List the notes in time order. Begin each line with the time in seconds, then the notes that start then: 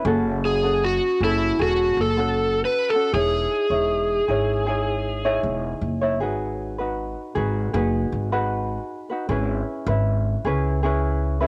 0.05 F#1 C#4 F#4 G#4 A4
0.45 G#4
0.63 C#4 F#4 A4
0.84 F#4
1.21 F#1 C#4 E4 F#4 G#4 A4
1.59 E1 C#4 F#4 G#4 A4
1.97 F#1 A4
2.17 C#4 F#4 A4
2.65 B4
2.90 A4
2.95 C#4 F#4
3.13 E1 D#4 E4 G#4 C#5
3.70 E1 D#4 E4 C#5
4.28 G#1 D#4 E4 G#4 C#5
4.66 D#4 E4 G#4 C#5
5.25 D#4 E4 G#4 C#5
5.43 E1
5.82 F#1
6.01 D#4 E4 C#5
6.20 G#1 D#4 F#4 G#4 B4
6.78 D#4 F#4 B4
7.35 G#1 D#4 F#4 G#4 B4
7.74 F#1 D#4 F#4 G#4 B4
8.12 G#1
8.32 D#4 F#4 G#4 B4
9.10 D#4 F#4 B4
9.29 G#1 C#4 E4 G#4 B4
9.87 G#1 C#4 E4 B4
10.45 C#2 C#4 E4 G#4 B4
10.83 C#4 E4 G#4 B4
11.41 C#4 E4 G#4 B4